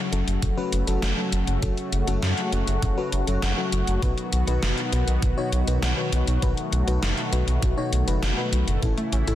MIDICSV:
0, 0, Header, 1, 6, 480
1, 0, Start_track
1, 0, Tempo, 600000
1, 1300, Time_signature, 4, 2, 24, 8
1, 7480, End_track
2, 0, Start_track
2, 0, Title_t, "FM electric piano"
2, 0, Program_c, 0, 5
2, 99, Note_on_c, 0, 54, 77
2, 99, Note_on_c, 0, 61, 71
2, 99, Note_on_c, 0, 66, 72
2, 100, Note_on_c, 0, 69, 84
2, 431, Note_off_c, 0, 54, 0
2, 431, Note_off_c, 0, 61, 0
2, 431, Note_off_c, 0, 66, 0
2, 431, Note_off_c, 0, 69, 0
2, 460, Note_on_c, 0, 54, 95
2, 460, Note_on_c, 0, 61, 86
2, 460, Note_on_c, 0, 66, 86
2, 460, Note_on_c, 0, 71, 109
2, 671, Note_off_c, 0, 54, 0
2, 671, Note_off_c, 0, 61, 0
2, 671, Note_off_c, 0, 66, 0
2, 671, Note_off_c, 0, 71, 0
2, 700, Note_on_c, 0, 54, 82
2, 700, Note_on_c, 0, 66, 76
2, 700, Note_on_c, 0, 69, 88
2, 701, Note_on_c, 0, 61, 75
2, 911, Note_off_c, 0, 54, 0
2, 911, Note_off_c, 0, 61, 0
2, 911, Note_off_c, 0, 66, 0
2, 911, Note_off_c, 0, 69, 0
2, 940, Note_on_c, 0, 54, 90
2, 940, Note_on_c, 0, 61, 77
2, 940, Note_on_c, 0, 66, 76
2, 940, Note_on_c, 0, 69, 94
2, 1271, Note_off_c, 0, 54, 0
2, 1271, Note_off_c, 0, 61, 0
2, 1271, Note_off_c, 0, 66, 0
2, 1271, Note_off_c, 0, 69, 0
2, 1300, Note_on_c, 0, 54, 72
2, 1300, Note_on_c, 0, 61, 70
2, 1300, Note_on_c, 0, 66, 70
2, 1300, Note_on_c, 0, 69, 85
2, 1368, Note_off_c, 0, 54, 0
2, 1368, Note_off_c, 0, 61, 0
2, 1368, Note_off_c, 0, 66, 0
2, 1368, Note_off_c, 0, 69, 0
2, 1660, Note_on_c, 0, 54, 86
2, 1660, Note_on_c, 0, 61, 83
2, 1660, Note_on_c, 0, 66, 80
2, 1660, Note_on_c, 0, 69, 98
2, 1991, Note_off_c, 0, 54, 0
2, 1991, Note_off_c, 0, 61, 0
2, 1991, Note_off_c, 0, 66, 0
2, 1991, Note_off_c, 0, 69, 0
2, 2020, Note_on_c, 0, 54, 76
2, 2020, Note_on_c, 0, 61, 74
2, 2020, Note_on_c, 0, 66, 72
2, 2020, Note_on_c, 0, 69, 85
2, 2351, Note_off_c, 0, 54, 0
2, 2351, Note_off_c, 0, 61, 0
2, 2351, Note_off_c, 0, 66, 0
2, 2351, Note_off_c, 0, 69, 0
2, 2380, Note_on_c, 0, 54, 95
2, 2380, Note_on_c, 0, 61, 88
2, 2380, Note_on_c, 0, 66, 85
2, 2380, Note_on_c, 0, 71, 101
2, 2591, Note_off_c, 0, 54, 0
2, 2591, Note_off_c, 0, 61, 0
2, 2591, Note_off_c, 0, 66, 0
2, 2591, Note_off_c, 0, 71, 0
2, 2620, Note_on_c, 0, 54, 84
2, 2620, Note_on_c, 0, 61, 79
2, 2620, Note_on_c, 0, 66, 76
2, 2620, Note_on_c, 0, 69, 89
2, 2831, Note_off_c, 0, 54, 0
2, 2831, Note_off_c, 0, 61, 0
2, 2831, Note_off_c, 0, 66, 0
2, 2831, Note_off_c, 0, 69, 0
2, 2860, Note_on_c, 0, 54, 86
2, 2860, Note_on_c, 0, 61, 79
2, 2860, Note_on_c, 0, 66, 78
2, 2860, Note_on_c, 0, 69, 96
2, 3191, Note_off_c, 0, 54, 0
2, 3191, Note_off_c, 0, 61, 0
2, 3191, Note_off_c, 0, 66, 0
2, 3191, Note_off_c, 0, 69, 0
2, 3220, Note_on_c, 0, 47, 77
2, 3220, Note_on_c, 0, 63, 71
2, 3220, Note_on_c, 0, 66, 71
2, 3220, Note_on_c, 0, 71, 82
2, 3288, Note_off_c, 0, 47, 0
2, 3288, Note_off_c, 0, 63, 0
2, 3288, Note_off_c, 0, 66, 0
2, 3288, Note_off_c, 0, 71, 0
2, 3580, Note_on_c, 0, 47, 90
2, 3580, Note_on_c, 0, 63, 80
2, 3580, Note_on_c, 0, 66, 79
2, 3580, Note_on_c, 0, 71, 97
2, 3911, Note_off_c, 0, 47, 0
2, 3911, Note_off_c, 0, 63, 0
2, 3911, Note_off_c, 0, 66, 0
2, 3911, Note_off_c, 0, 71, 0
2, 3940, Note_on_c, 0, 47, 77
2, 3940, Note_on_c, 0, 63, 69
2, 3940, Note_on_c, 0, 66, 71
2, 3940, Note_on_c, 0, 71, 86
2, 4271, Note_off_c, 0, 47, 0
2, 4271, Note_off_c, 0, 63, 0
2, 4271, Note_off_c, 0, 66, 0
2, 4271, Note_off_c, 0, 71, 0
2, 4300, Note_on_c, 0, 47, 97
2, 4300, Note_on_c, 0, 63, 86
2, 4300, Note_on_c, 0, 66, 87
2, 4300, Note_on_c, 0, 73, 109
2, 4511, Note_off_c, 0, 47, 0
2, 4511, Note_off_c, 0, 63, 0
2, 4511, Note_off_c, 0, 66, 0
2, 4511, Note_off_c, 0, 73, 0
2, 4540, Note_on_c, 0, 47, 84
2, 4540, Note_on_c, 0, 63, 75
2, 4540, Note_on_c, 0, 66, 78
2, 4540, Note_on_c, 0, 71, 90
2, 4751, Note_off_c, 0, 47, 0
2, 4751, Note_off_c, 0, 63, 0
2, 4751, Note_off_c, 0, 66, 0
2, 4751, Note_off_c, 0, 71, 0
2, 4780, Note_on_c, 0, 47, 86
2, 4780, Note_on_c, 0, 63, 78
2, 4780, Note_on_c, 0, 66, 78
2, 4780, Note_on_c, 0, 71, 94
2, 5111, Note_off_c, 0, 47, 0
2, 5111, Note_off_c, 0, 63, 0
2, 5111, Note_off_c, 0, 66, 0
2, 5111, Note_off_c, 0, 71, 0
2, 5140, Note_on_c, 0, 47, 74
2, 5140, Note_on_c, 0, 63, 71
2, 5140, Note_on_c, 0, 66, 72
2, 5140, Note_on_c, 0, 71, 88
2, 5208, Note_off_c, 0, 47, 0
2, 5208, Note_off_c, 0, 63, 0
2, 5208, Note_off_c, 0, 66, 0
2, 5208, Note_off_c, 0, 71, 0
2, 5500, Note_on_c, 0, 47, 82
2, 5500, Note_on_c, 0, 63, 77
2, 5500, Note_on_c, 0, 66, 80
2, 5500, Note_on_c, 0, 71, 95
2, 5831, Note_off_c, 0, 47, 0
2, 5831, Note_off_c, 0, 63, 0
2, 5831, Note_off_c, 0, 66, 0
2, 5831, Note_off_c, 0, 71, 0
2, 5860, Note_on_c, 0, 47, 76
2, 5860, Note_on_c, 0, 63, 71
2, 5860, Note_on_c, 0, 66, 70
2, 5860, Note_on_c, 0, 71, 87
2, 6191, Note_off_c, 0, 47, 0
2, 6191, Note_off_c, 0, 63, 0
2, 6191, Note_off_c, 0, 66, 0
2, 6191, Note_off_c, 0, 71, 0
2, 6220, Note_on_c, 0, 47, 98
2, 6220, Note_on_c, 0, 63, 89
2, 6220, Note_on_c, 0, 66, 85
2, 6220, Note_on_c, 0, 73, 107
2, 6431, Note_off_c, 0, 47, 0
2, 6431, Note_off_c, 0, 63, 0
2, 6431, Note_off_c, 0, 66, 0
2, 6431, Note_off_c, 0, 73, 0
2, 6460, Note_on_c, 0, 47, 85
2, 6460, Note_on_c, 0, 63, 76
2, 6460, Note_on_c, 0, 66, 76
2, 6460, Note_on_c, 0, 71, 94
2, 6671, Note_off_c, 0, 47, 0
2, 6671, Note_off_c, 0, 63, 0
2, 6671, Note_off_c, 0, 66, 0
2, 6671, Note_off_c, 0, 71, 0
2, 6701, Note_on_c, 0, 47, 86
2, 6701, Note_on_c, 0, 63, 80
2, 6701, Note_on_c, 0, 66, 78
2, 6701, Note_on_c, 0, 71, 94
2, 7031, Note_off_c, 0, 47, 0
2, 7031, Note_off_c, 0, 63, 0
2, 7031, Note_off_c, 0, 66, 0
2, 7031, Note_off_c, 0, 71, 0
2, 7060, Note_on_c, 0, 45, 75
2, 7060, Note_on_c, 0, 61, 70
2, 7060, Note_on_c, 0, 64, 70
2, 7060, Note_on_c, 0, 69, 87
2, 7128, Note_off_c, 0, 45, 0
2, 7128, Note_off_c, 0, 61, 0
2, 7128, Note_off_c, 0, 64, 0
2, 7128, Note_off_c, 0, 69, 0
2, 7420, Note_on_c, 0, 45, 86
2, 7420, Note_on_c, 0, 61, 81
2, 7420, Note_on_c, 0, 64, 77
2, 7420, Note_on_c, 0, 69, 98
2, 7480, Note_off_c, 0, 45, 0
2, 7480, Note_off_c, 0, 61, 0
2, 7480, Note_off_c, 0, 64, 0
2, 7480, Note_off_c, 0, 69, 0
2, 7480, End_track
3, 0, Start_track
3, 0, Title_t, "Synth arpeggio sound"
3, 0, Program_c, 1, 84
3, 7060, Note_on_c, 1, 52, 81
3, 7162, Note_off_c, 1, 52, 0
3, 7180, Note_on_c, 1, 57, 98
3, 7294, Note_off_c, 1, 57, 0
3, 7300, Note_on_c, 1, 61, 74
3, 7414, Note_off_c, 1, 61, 0
3, 7421, Note_on_c, 1, 64, 75
3, 7480, Note_off_c, 1, 64, 0
3, 7480, End_track
4, 0, Start_track
4, 0, Title_t, "Analog synth pad"
4, 0, Program_c, 2, 89
4, 0, Note_on_c, 2, 49, 76
4, 0, Note_on_c, 2, 54, 72
4, 0, Note_on_c, 2, 57, 77
4, 0, Note_on_c, 2, 66, 92
4, 3188, Note_off_c, 2, 49, 0
4, 3188, Note_off_c, 2, 57, 0
4, 3220, Note_on_c, 2, 59, 78
4, 3221, Note_on_c, 2, 51, 85
4, 5121, Note_off_c, 2, 59, 0
4, 5140, Note_on_c, 2, 57, 73
4, 7028, Note_off_c, 2, 51, 0
4, 7028, Note_off_c, 2, 54, 0
4, 7028, Note_off_c, 2, 66, 0
4, 7060, Note_on_c, 2, 49, 82
4, 7060, Note_on_c, 2, 52, 76
4, 7060, Note_on_c, 2, 64, 88
4, 7480, Note_off_c, 2, 49, 0
4, 7480, Note_off_c, 2, 52, 0
4, 7480, Note_off_c, 2, 57, 0
4, 7480, Note_off_c, 2, 64, 0
4, 7480, End_track
5, 0, Start_track
5, 0, Title_t, "Analog synth bass"
5, 0, Program_c, 3, 38
5, 99, Note_on_c, 3, 30, 89
5, 187, Note_off_c, 3, 30, 0
5, 219, Note_on_c, 3, 30, 76
5, 307, Note_off_c, 3, 30, 0
5, 340, Note_on_c, 3, 30, 103
5, 428, Note_off_c, 3, 30, 0
5, 580, Note_on_c, 3, 30, 91
5, 668, Note_off_c, 3, 30, 0
5, 699, Note_on_c, 3, 30, 77
5, 787, Note_off_c, 3, 30, 0
5, 819, Note_on_c, 3, 30, 101
5, 907, Note_off_c, 3, 30, 0
5, 1059, Note_on_c, 3, 30, 88
5, 1147, Note_off_c, 3, 30, 0
5, 1179, Note_on_c, 3, 30, 78
5, 1267, Note_off_c, 3, 30, 0
5, 1300, Note_on_c, 3, 30, 100
5, 1388, Note_off_c, 3, 30, 0
5, 1539, Note_on_c, 3, 30, 89
5, 1627, Note_off_c, 3, 30, 0
5, 1660, Note_on_c, 3, 30, 81
5, 1748, Note_off_c, 3, 30, 0
5, 1780, Note_on_c, 3, 42, 97
5, 1868, Note_off_c, 3, 42, 0
5, 2020, Note_on_c, 3, 30, 91
5, 2108, Note_off_c, 3, 30, 0
5, 2140, Note_on_c, 3, 30, 81
5, 2228, Note_off_c, 3, 30, 0
5, 2260, Note_on_c, 3, 30, 98
5, 2348, Note_off_c, 3, 30, 0
5, 2501, Note_on_c, 3, 30, 86
5, 2588, Note_off_c, 3, 30, 0
5, 2621, Note_on_c, 3, 30, 78
5, 2708, Note_off_c, 3, 30, 0
5, 2740, Note_on_c, 3, 30, 104
5, 2828, Note_off_c, 3, 30, 0
5, 2980, Note_on_c, 3, 30, 84
5, 3068, Note_off_c, 3, 30, 0
5, 3101, Note_on_c, 3, 30, 80
5, 3188, Note_off_c, 3, 30, 0
5, 3220, Note_on_c, 3, 35, 95
5, 3308, Note_off_c, 3, 35, 0
5, 3461, Note_on_c, 3, 35, 90
5, 3548, Note_off_c, 3, 35, 0
5, 3580, Note_on_c, 3, 35, 80
5, 3668, Note_off_c, 3, 35, 0
5, 3700, Note_on_c, 3, 30, 97
5, 3788, Note_off_c, 3, 30, 0
5, 3940, Note_on_c, 3, 35, 95
5, 4028, Note_off_c, 3, 35, 0
5, 4060, Note_on_c, 3, 35, 77
5, 4148, Note_off_c, 3, 35, 0
5, 4180, Note_on_c, 3, 35, 99
5, 4268, Note_off_c, 3, 35, 0
5, 4419, Note_on_c, 3, 35, 91
5, 4507, Note_off_c, 3, 35, 0
5, 4540, Note_on_c, 3, 35, 78
5, 4628, Note_off_c, 3, 35, 0
5, 4659, Note_on_c, 3, 35, 102
5, 4747, Note_off_c, 3, 35, 0
5, 4899, Note_on_c, 3, 35, 91
5, 4987, Note_off_c, 3, 35, 0
5, 5020, Note_on_c, 3, 35, 80
5, 5108, Note_off_c, 3, 35, 0
5, 5140, Note_on_c, 3, 35, 100
5, 5228, Note_off_c, 3, 35, 0
5, 5380, Note_on_c, 3, 35, 91
5, 5468, Note_off_c, 3, 35, 0
5, 5500, Note_on_c, 3, 35, 78
5, 5588, Note_off_c, 3, 35, 0
5, 5620, Note_on_c, 3, 30, 95
5, 5708, Note_off_c, 3, 30, 0
5, 5860, Note_on_c, 3, 35, 88
5, 5948, Note_off_c, 3, 35, 0
5, 5980, Note_on_c, 3, 35, 84
5, 6068, Note_off_c, 3, 35, 0
5, 6100, Note_on_c, 3, 35, 103
5, 6188, Note_off_c, 3, 35, 0
5, 6340, Note_on_c, 3, 35, 93
5, 6428, Note_off_c, 3, 35, 0
5, 6460, Note_on_c, 3, 30, 79
5, 6548, Note_off_c, 3, 30, 0
5, 6580, Note_on_c, 3, 30, 101
5, 6668, Note_off_c, 3, 30, 0
5, 6820, Note_on_c, 3, 35, 84
5, 6908, Note_off_c, 3, 35, 0
5, 6940, Note_on_c, 3, 30, 77
5, 7028, Note_off_c, 3, 30, 0
5, 7060, Note_on_c, 3, 33, 99
5, 7148, Note_off_c, 3, 33, 0
5, 7300, Note_on_c, 3, 33, 94
5, 7388, Note_off_c, 3, 33, 0
5, 7420, Note_on_c, 3, 33, 81
5, 7480, Note_off_c, 3, 33, 0
5, 7480, End_track
6, 0, Start_track
6, 0, Title_t, "Drums"
6, 100, Note_on_c, 9, 42, 76
6, 180, Note_off_c, 9, 42, 0
6, 221, Note_on_c, 9, 42, 52
6, 301, Note_off_c, 9, 42, 0
6, 340, Note_on_c, 9, 36, 112
6, 340, Note_on_c, 9, 42, 79
6, 420, Note_off_c, 9, 36, 0
6, 420, Note_off_c, 9, 42, 0
6, 580, Note_on_c, 9, 42, 77
6, 660, Note_off_c, 9, 42, 0
6, 700, Note_on_c, 9, 42, 55
6, 780, Note_off_c, 9, 42, 0
6, 819, Note_on_c, 9, 38, 115
6, 819, Note_on_c, 9, 42, 81
6, 899, Note_off_c, 9, 38, 0
6, 899, Note_off_c, 9, 42, 0
6, 1060, Note_on_c, 9, 42, 78
6, 1140, Note_off_c, 9, 42, 0
6, 1180, Note_on_c, 9, 42, 51
6, 1260, Note_off_c, 9, 42, 0
6, 1300, Note_on_c, 9, 36, 119
6, 1300, Note_on_c, 9, 42, 77
6, 1380, Note_off_c, 9, 36, 0
6, 1380, Note_off_c, 9, 42, 0
6, 1420, Note_on_c, 9, 42, 37
6, 1500, Note_off_c, 9, 42, 0
6, 1540, Note_on_c, 9, 42, 76
6, 1620, Note_off_c, 9, 42, 0
6, 1660, Note_on_c, 9, 42, 51
6, 1740, Note_off_c, 9, 42, 0
6, 1780, Note_on_c, 9, 38, 118
6, 1780, Note_on_c, 9, 42, 78
6, 1860, Note_off_c, 9, 38, 0
6, 1860, Note_off_c, 9, 42, 0
6, 1900, Note_on_c, 9, 42, 38
6, 1980, Note_off_c, 9, 42, 0
6, 2020, Note_on_c, 9, 42, 73
6, 2100, Note_off_c, 9, 42, 0
6, 2140, Note_on_c, 9, 42, 54
6, 2220, Note_off_c, 9, 42, 0
6, 2260, Note_on_c, 9, 36, 116
6, 2260, Note_on_c, 9, 42, 80
6, 2340, Note_off_c, 9, 36, 0
6, 2340, Note_off_c, 9, 42, 0
6, 2499, Note_on_c, 9, 42, 78
6, 2579, Note_off_c, 9, 42, 0
6, 2620, Note_on_c, 9, 42, 54
6, 2700, Note_off_c, 9, 42, 0
6, 2739, Note_on_c, 9, 38, 117
6, 2739, Note_on_c, 9, 42, 80
6, 2819, Note_off_c, 9, 38, 0
6, 2819, Note_off_c, 9, 42, 0
6, 2980, Note_on_c, 9, 42, 77
6, 3060, Note_off_c, 9, 42, 0
6, 3099, Note_on_c, 9, 42, 51
6, 3179, Note_off_c, 9, 42, 0
6, 3220, Note_on_c, 9, 36, 120
6, 3220, Note_on_c, 9, 42, 77
6, 3300, Note_off_c, 9, 36, 0
6, 3300, Note_off_c, 9, 42, 0
6, 3340, Note_on_c, 9, 42, 36
6, 3420, Note_off_c, 9, 42, 0
6, 3460, Note_on_c, 9, 42, 74
6, 3540, Note_off_c, 9, 42, 0
6, 3580, Note_on_c, 9, 42, 50
6, 3660, Note_off_c, 9, 42, 0
6, 3700, Note_on_c, 9, 38, 117
6, 3700, Note_on_c, 9, 42, 77
6, 3780, Note_off_c, 9, 38, 0
6, 3780, Note_off_c, 9, 42, 0
6, 3821, Note_on_c, 9, 42, 38
6, 3901, Note_off_c, 9, 42, 0
6, 3940, Note_on_c, 9, 42, 73
6, 4020, Note_off_c, 9, 42, 0
6, 4060, Note_on_c, 9, 42, 51
6, 4140, Note_off_c, 9, 42, 0
6, 4180, Note_on_c, 9, 36, 122
6, 4180, Note_on_c, 9, 42, 74
6, 4260, Note_off_c, 9, 36, 0
6, 4260, Note_off_c, 9, 42, 0
6, 4420, Note_on_c, 9, 42, 79
6, 4500, Note_off_c, 9, 42, 0
6, 4540, Note_on_c, 9, 42, 53
6, 4620, Note_off_c, 9, 42, 0
6, 4660, Note_on_c, 9, 38, 124
6, 4660, Note_on_c, 9, 42, 82
6, 4740, Note_off_c, 9, 38, 0
6, 4740, Note_off_c, 9, 42, 0
6, 4900, Note_on_c, 9, 42, 80
6, 4980, Note_off_c, 9, 42, 0
6, 5020, Note_on_c, 9, 42, 52
6, 5100, Note_off_c, 9, 42, 0
6, 5139, Note_on_c, 9, 42, 78
6, 5140, Note_on_c, 9, 36, 114
6, 5219, Note_off_c, 9, 42, 0
6, 5220, Note_off_c, 9, 36, 0
6, 5260, Note_on_c, 9, 42, 34
6, 5340, Note_off_c, 9, 42, 0
6, 5380, Note_on_c, 9, 42, 67
6, 5460, Note_off_c, 9, 42, 0
6, 5501, Note_on_c, 9, 42, 48
6, 5581, Note_off_c, 9, 42, 0
6, 5621, Note_on_c, 9, 38, 119
6, 5621, Note_on_c, 9, 42, 77
6, 5701, Note_off_c, 9, 38, 0
6, 5701, Note_off_c, 9, 42, 0
6, 5740, Note_on_c, 9, 42, 35
6, 5820, Note_off_c, 9, 42, 0
6, 5860, Note_on_c, 9, 42, 68
6, 5940, Note_off_c, 9, 42, 0
6, 5981, Note_on_c, 9, 42, 50
6, 6061, Note_off_c, 9, 42, 0
6, 6100, Note_on_c, 9, 36, 117
6, 6100, Note_on_c, 9, 42, 73
6, 6180, Note_off_c, 9, 36, 0
6, 6180, Note_off_c, 9, 42, 0
6, 6340, Note_on_c, 9, 42, 76
6, 6420, Note_off_c, 9, 42, 0
6, 6461, Note_on_c, 9, 42, 52
6, 6541, Note_off_c, 9, 42, 0
6, 6581, Note_on_c, 9, 38, 115
6, 6581, Note_on_c, 9, 42, 76
6, 6661, Note_off_c, 9, 38, 0
6, 6661, Note_off_c, 9, 42, 0
6, 6821, Note_on_c, 9, 42, 73
6, 6901, Note_off_c, 9, 42, 0
6, 6941, Note_on_c, 9, 42, 50
6, 7021, Note_off_c, 9, 42, 0
6, 7060, Note_on_c, 9, 36, 116
6, 7061, Note_on_c, 9, 42, 76
6, 7140, Note_off_c, 9, 36, 0
6, 7141, Note_off_c, 9, 42, 0
6, 7180, Note_on_c, 9, 42, 33
6, 7260, Note_off_c, 9, 42, 0
6, 7300, Note_on_c, 9, 42, 67
6, 7380, Note_off_c, 9, 42, 0
6, 7420, Note_on_c, 9, 42, 46
6, 7480, Note_off_c, 9, 42, 0
6, 7480, End_track
0, 0, End_of_file